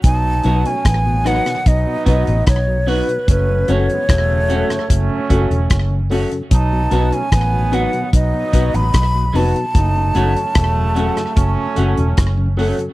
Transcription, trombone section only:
X:1
M:4/4
L:1/16
Q:1/4=74
K:Bmix
V:1 name="Trombone section"
[F,B,D]3 [F,A,C] [D,F,B,]4 [F,B,D]6 z2 | [F,A,C]3 [E,G,B,] [C,F,A,]4 [F,A,C]6 z2 | [F,B,D]3 [F,A,C] [D,F,B,]4 [F,B,D]6 z2 | [F,A,D]3 [F,A,C] [C,F,A,]4 [F,A,C]6 z2 |]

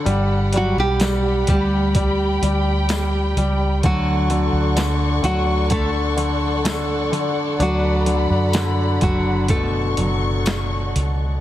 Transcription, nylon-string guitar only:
X:1
M:4/4
L:1/16
Q:1/4=64
K:D
V:1 name="Nylon-string guitar"
z2 [F,F] [G,G]3 [G,G]6 z4 | [F,F]4 z2 [F,F]2 [A,A]6 z2 | [F,F]6 [F,F]2 [A,A]6 z2 |]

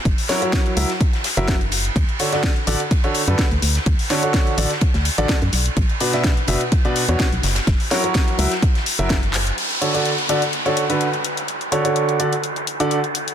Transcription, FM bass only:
X:1
M:4/4
L:1/16
Q:"Swing 16ths" 1/4=126
K:D
V:1 name="FM bass" clef=bass
F,,, z4 z C,, z4 F,,,4 z | D,, z4 z A,,, z4 F,, z D,, D,, z | D,, z4 z A,,, z2 D,, z A,,, z F,, B,,, z | B,,, z4 z F,,, z4 E,, z B,,, F,,, z |
F,,, z4 z C,, z4 F,,,4 z | z16 | z16 |]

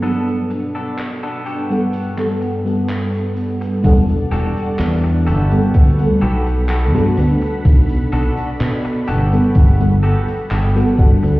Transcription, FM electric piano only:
X:1
M:4/4
L:1/16
Q:1/4=63
K:G
V:1 name="FM electric piano"
[F,B,DA] z6 [G,B,Af]2 [G,B,Af]2 [G,B,Af]4- [G,B,Af] | [G,DAf]6 z [G,B,Af]2 [G,B,Af]2 z2 [G,B,FA] [B,DA]2- | [B,DA]6 z [G,B,Af]2 [G,B,Af]2 z2 [G,B,FA] [G,DAf]2 |]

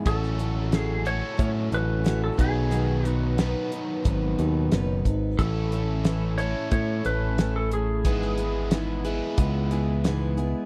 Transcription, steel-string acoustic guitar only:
X:1
M:4/4
L:1/8
Q:1/4=90
K:Alyd
V:1 name="Steel-string acoustic guitar"
[A,CFA] [CFA] [A,CFA] [CFA] [A,CFA] [CFA] [A,CFA] [F,B,DB] | [B,,D,F,B,DB] [F,B,DB] [B,,D,F,B,DB] [F,B,DB] [F,B,DB] [F,B,DB] [B,,D,F,B,DB] [F,B,DB] | [A,,E,A,CEA] [A,CEA] [A,,E,A,CEA] [A,CEA] [A,CEA] [A,CEA] [A,,E,A,CEA] [A,CE] | [G,,E,G,B,EG] [G,B,EG] [G,,E,G,B,EG] [G,B,EG] [G,B,EG] [G,B,EG] [G,,E,G,B,EG] [G,B,EG] |]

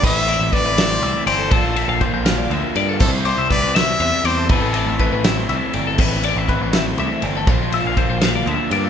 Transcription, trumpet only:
X:1
M:6/8
L:1/8
Q:3/8=81
K:Ador
V:1 name="Trumpet"
e2 d3 c | A2 z4 | A c d e2 c | A3 z3 |
z6 | z6 |]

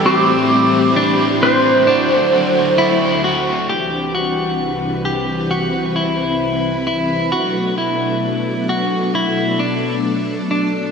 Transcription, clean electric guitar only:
X:1
M:4/4
L:1/8
Q:1/4=66
K:Clyd
V:1 name="Clean electric guitar"
C2 D C D2 E F | G F2 G F E2 E | F E2 F E D2 D |]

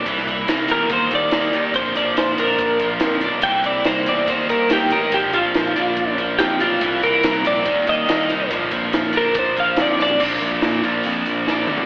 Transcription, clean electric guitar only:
X:1
M:4/4
L:1/8
Q:1/4=142
K:Bb
V:1 name="Clean electric guitar"
z3 B c d3 | c d c B4 z | g d c d c B G B | G F4 z G F- |
F B2 d2 e3 | z3 B c f d d | z8 |]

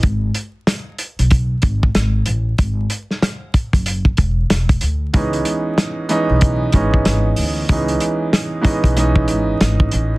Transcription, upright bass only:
X:1
M:4/4
L:1/16
Q:"Swing 16ths" 1/4=94
K:C#m
V:1 name="Upright bass" clef=bass
G,,,2 z4 z B,,,3 G,,,2 G,,,2 A,,,2 | G,,,2 z4 z F,,,3 E,,,2 E,,,2 =D,,2 | C,,2 z4 z B,,,3 G,,,2 G,,,2 =D,,2 | C,,2 z4 z B,,,3 G,,,2 G,,,2 A,,,2 |]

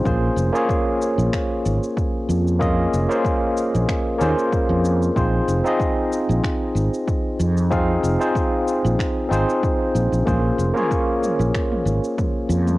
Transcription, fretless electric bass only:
X:1
M:4/4
L:1/16
Q:"Swing 16ths" 1/4=94
K:Bbm
V:1 name="Fretless electric bass" clef=bass
B,,, z F,,, z4 B,,, z2 A,,, z3 F,,2- | F,,2 F,,, z4 B,,, z2 E,, z2 F,,3 | B,,, z F,,, z4 B,,, z2 A,,, z3 F,,2- | F,,2 F,,, z4 B,,, z2 A,,, z3 B,,, B,,, |
B,,, z F,,, z4 B,,, z2 A,,, z3 F,,2 |]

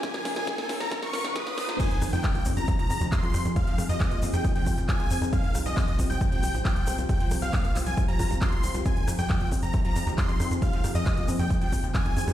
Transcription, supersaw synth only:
X:1
M:4/4
L:1/16
Q:1/4=136
K:Fm
V:1 name="Supersaw synth"
a2 z a3 z b z d'2 z e'3 z | a2 z g3 z b z b2 z c'3 z | f2 z e3 z g z g2 z a3 z | f2 z e3 z g z g2 z g3 z |
g2 z f3 z a z b2 z c'3 z | a2 z g3 z b z b2 z c'3 z | f2 z e3 z g z g2 z a3 z |]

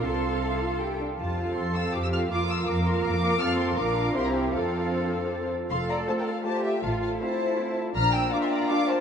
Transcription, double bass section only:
X:1
M:3/4
L:1/8
Q:1/4=160
K:F
V:1 name="Double bass section" clef=bass
C,,4- C,, z | F,,2 F,,2 F,,2 | F,,2 F,,2 F,,2 | F,,2 B,,,2 C,,2 |
F,,4- F,, z | F,,,2 z4 | A,,,2 z4 | B,,,2 z4 |]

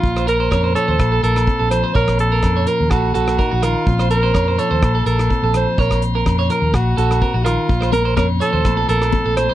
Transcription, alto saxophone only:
X:1
M:4/4
L:1/8
Q:"Swing 16ths" 1/4=125
K:Bbm
V:1 name="Alto saxophone"
F B2 =A2 A2 c | B =A2 B G G2 F- | F B2 =A2 A2 c | B z2 B G G2 F- |
F B B =A2 A2 c |]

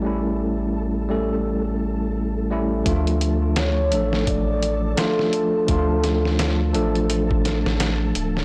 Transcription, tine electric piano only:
X:1
M:4/4
L:1/8
Q:"Swing 16ths" 1/4=85
K:Dm
V:1 name="Tine electric piano"
[G,A,^CE]3 [G,A,CA] z3 [G,A,CE] | [F,A,DF]3 [F,A,DA]3 [F,A,DF]2 | [F,A,DF]3 [F,A,DA] z4 |]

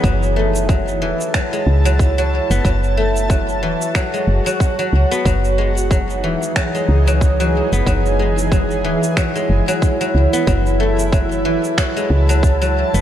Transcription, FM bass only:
X:1
M:4/4
L:1/16
Q:"Swing 16ths" 1/4=92
K:F#dor
V:1 name="FM bass" clef=bass
F,,,6 E,,, z3 C,,4 z F,,, | F,,,6 E,,, z3 F,,, z3 C,, z | F,,,6 E,,, z3 C,,4 z F,,, | F,,,6 E,,, z3 F,,, z3 C,, z |
F,,,6 E,,, z3 C,,4 z F,,, |]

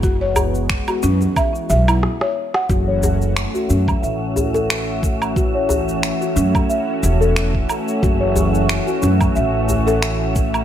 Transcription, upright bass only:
X:1
M:4/4
L:1/8
Q:"Swing 16ths" 1/4=90
K:F#m
V:1 name="Upright bass" clef=bass
F,,,2 z F,, z B,,, z2 | F,,,2 z F,, A,,,4- | A,,,2 z F,, z E,,,2 z | F,,,2 z F,, A,,,4 |]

